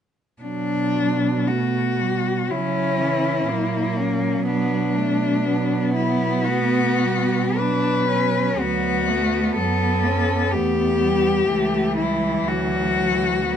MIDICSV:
0, 0, Header, 1, 5, 480
1, 0, Start_track
1, 0, Key_signature, 2, "minor"
1, 0, Tempo, 1065719
1, 192, Time_signature, 4, 2, 24, 8
1, 667, Tempo, 1018676
1, 1147, Tempo, 991736
1, 3067, Tempo, 1107011
1, 3547, Tempo, 1015228
1, 4027, Tempo, 972447
1, 6484, End_track
2, 0, Start_track
2, 0, Title_t, "Cello"
2, 0, Program_c, 0, 42
2, 190, Note_on_c, 0, 62, 44
2, 662, Note_on_c, 0, 66, 42
2, 669, Note_off_c, 0, 62, 0
2, 1149, Note_on_c, 0, 64, 44
2, 1156, Note_off_c, 0, 66, 0
2, 1857, Note_on_c, 0, 61, 39
2, 1865, Note_off_c, 0, 64, 0
2, 2094, Note_on_c, 0, 62, 46
2, 2101, Note_off_c, 0, 61, 0
2, 2814, Note_off_c, 0, 62, 0
2, 2817, Note_on_c, 0, 64, 38
2, 3059, Note_on_c, 0, 66, 46
2, 3066, Note_off_c, 0, 64, 0
2, 3542, Note_on_c, 0, 71, 42
2, 3548, Note_off_c, 0, 66, 0
2, 4020, Note_on_c, 0, 66, 51
2, 4027, Note_off_c, 0, 71, 0
2, 4506, Note_off_c, 0, 66, 0
2, 4509, Note_on_c, 0, 69, 44
2, 4975, Note_on_c, 0, 67, 51
2, 4982, Note_off_c, 0, 69, 0
2, 5699, Note_off_c, 0, 67, 0
2, 5702, Note_on_c, 0, 64, 45
2, 5946, Note_on_c, 0, 66, 50
2, 5953, Note_off_c, 0, 64, 0
2, 6484, Note_off_c, 0, 66, 0
2, 6484, End_track
3, 0, Start_track
3, 0, Title_t, "Cello"
3, 0, Program_c, 1, 42
3, 1145, Note_on_c, 1, 61, 34
3, 1622, Note_on_c, 1, 58, 36
3, 1629, Note_off_c, 1, 61, 0
3, 2096, Note_off_c, 1, 58, 0
3, 2099, Note_on_c, 1, 59, 38
3, 2341, Note_on_c, 1, 57, 31
3, 2348, Note_off_c, 1, 59, 0
3, 2576, Note_on_c, 1, 59, 38
3, 2583, Note_off_c, 1, 57, 0
3, 3549, Note_on_c, 1, 62, 35
3, 3556, Note_off_c, 1, 59, 0
3, 3790, Note_off_c, 1, 62, 0
3, 3793, Note_on_c, 1, 61, 29
3, 4033, Note_on_c, 1, 59, 34
3, 4040, Note_off_c, 1, 61, 0
3, 4274, Note_on_c, 1, 57, 33
3, 4282, Note_off_c, 1, 59, 0
3, 4515, Note_on_c, 1, 54, 32
3, 4522, Note_off_c, 1, 57, 0
3, 4752, Note_on_c, 1, 61, 33
3, 4759, Note_off_c, 1, 54, 0
3, 4983, Note_on_c, 1, 59, 30
3, 4991, Note_off_c, 1, 61, 0
3, 5459, Note_off_c, 1, 59, 0
3, 5462, Note_on_c, 1, 57, 37
3, 5707, Note_on_c, 1, 55, 32
3, 5714, Note_off_c, 1, 57, 0
3, 5950, Note_on_c, 1, 54, 40
3, 5957, Note_off_c, 1, 55, 0
3, 6426, Note_off_c, 1, 54, 0
3, 6429, Note_on_c, 1, 59, 38
3, 6484, Note_off_c, 1, 59, 0
3, 6484, End_track
4, 0, Start_track
4, 0, Title_t, "Cello"
4, 0, Program_c, 2, 42
4, 192, Note_on_c, 2, 54, 26
4, 666, Note_on_c, 2, 57, 27
4, 673, Note_off_c, 2, 54, 0
4, 909, Note_on_c, 2, 55, 28
4, 916, Note_off_c, 2, 57, 0
4, 1146, Note_off_c, 2, 55, 0
4, 1149, Note_on_c, 2, 54, 31
4, 1389, Note_on_c, 2, 52, 33
4, 1396, Note_off_c, 2, 54, 0
4, 1628, Note_on_c, 2, 54, 29
4, 1636, Note_off_c, 2, 52, 0
4, 2581, Note_off_c, 2, 54, 0
4, 2585, Note_on_c, 2, 54, 28
4, 3069, Note_on_c, 2, 57, 31
4, 3076, Note_off_c, 2, 54, 0
4, 3308, Note_on_c, 2, 55, 34
4, 3314, Note_off_c, 2, 57, 0
4, 3552, Note_on_c, 2, 54, 33
4, 3560, Note_off_c, 2, 55, 0
4, 4030, Note_off_c, 2, 54, 0
4, 4035, Note_on_c, 2, 54, 33
4, 4282, Note_on_c, 2, 59, 31
4, 4289, Note_off_c, 2, 54, 0
4, 4990, Note_on_c, 2, 57, 33
4, 4997, Note_off_c, 2, 59, 0
4, 5232, Note_on_c, 2, 55, 38
4, 5240, Note_off_c, 2, 57, 0
4, 5470, Note_off_c, 2, 55, 0
4, 5472, Note_on_c, 2, 52, 34
4, 6428, Note_on_c, 2, 54, 33
4, 6435, Note_off_c, 2, 52, 0
4, 6484, Note_off_c, 2, 54, 0
4, 6484, End_track
5, 0, Start_track
5, 0, Title_t, "Cello"
5, 0, Program_c, 3, 42
5, 192, Note_on_c, 3, 47, 35
5, 1148, Note_on_c, 3, 49, 32
5, 1156, Note_off_c, 3, 47, 0
5, 1624, Note_off_c, 3, 49, 0
5, 1627, Note_on_c, 3, 46, 29
5, 2091, Note_off_c, 3, 46, 0
5, 2100, Note_on_c, 3, 47, 33
5, 4008, Note_off_c, 3, 47, 0
5, 4033, Note_on_c, 3, 38, 36
5, 4509, Note_off_c, 3, 38, 0
5, 4519, Note_on_c, 3, 42, 33
5, 4992, Note_on_c, 3, 40, 36
5, 4999, Note_off_c, 3, 42, 0
5, 5466, Note_off_c, 3, 40, 0
5, 5468, Note_on_c, 3, 37, 30
5, 5942, Note_off_c, 3, 37, 0
5, 5954, Note_on_c, 3, 38, 38
5, 6484, Note_off_c, 3, 38, 0
5, 6484, End_track
0, 0, End_of_file